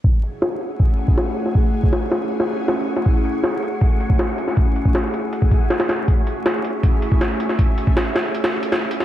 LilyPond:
<<
  \new Staff \with { instrumentName = "Synth texture" } { \time 4/4 \key fis \minor \tempo 4 = 159 <fis' fis''>1~ | <fis' fis''>1~ | <fis' fis''>1~ | <fis' fis''>1 |
e''1~ | e''1 | }
  \new DrumStaff \with { instrumentName = "Drums" } \drummode { \time 4/4 <hh bd>8 hh8 <hh sn>8 hh8 <hh bd>8 hh16 bd16 <hh sn>8 hh16 sn16 | <hh bd>8 hh16 bd16 <hh sn>8 <hh sn>8 hh16 <hh sn>8 hh16 <hh sn>8 hh16 sn16 | <hh bd>8 hh8 <hh sn>8 hh8 <hh bd>8 hh16 bd16 <hh sn>8 hh16 sn16 | <hh bd>8 hh16 bd16 <hh sn>8 hh8 hh16 bd16 <hh bd>8 <hh sn>16 <hh sn>16 <hh sn>8 |
<hh bd>8 hh8 <hh sn>8 hh8 <hh bd>8 hh16 bd16 <hh sn>8 hh16 sn16 | <hh bd>8 hh16 bd16 <hh sn>8 <hh sn>8 hh16 <hh sn>8 hh16 <hh sn>8 hh16 sn16 | }
>>